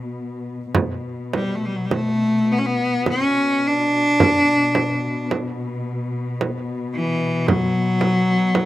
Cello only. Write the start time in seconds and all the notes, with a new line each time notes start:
1.35 G3
1.55 A3
1.65 G3
1.76 F#3
1.85 G3
1.94 A3
2.52 B3
2.59 C#4
2.66 B3
3.09 C#4
3.67 D4
6.94 E3
7.46 F#3